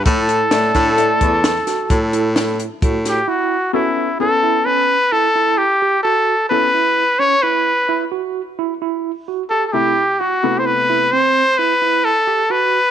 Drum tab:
HH |xxxxxxxxxxxxxx|--------------|--------------|--------------|
SD |--oo--oo--o--o|--------------|--------------|--------------|
BD |o--o-o--o---o-|--------------|--------------|--------------|